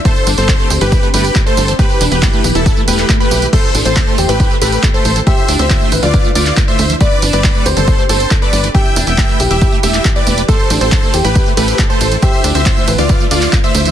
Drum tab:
CC |----------------|----------------|x---------------|----------------|
RD |----------------|----------------|----------------|----------------|
HH |x-oxx-oxx-oxx-ox|x-oxx-oxx-oxx-ox|x-oxx-oxx-oxx-ox|x-oxx-oxx-oxx-ox|
TB |xxxxxxxxxxxxxxxx|xxxxxxxxxxxxxxxx|xxxxxxxxxxxxxxxx|xxxxxxxxxxxxxxxx|
CP |----x-------x---|----x------xx---|----x-------x---|----x------xx---|
BD |o---o---o---o---|o---o---o---o---|o---o---o---o---|o---o---o---o---|

CC |----------------|----------------|----------------|----------------|
RD |----------------|----------------|x-x-x-x-x-x-x-x-|x-x-x-x-x-x-x-x-|
HH |x-oxx-oxx-oxx-ox|x-oxx-oxx-oxx-ox|x-oxx-oxx-oxx-ox|x-oxx-oxx-oxx-ox|
TB |xxxxxxxxxxxxxxxx|xxxxxxxxxxxxxxxx|xxxxxxxxxxxxxxxx|xxxxxxxxxxxxxxxx|
CP |----x-------x---|----x------xx---|----x-------x---|----x------xx---|
BD |o---o---o---o---|o---o---o---o---|o---o---o---o---|o---o---o---o---|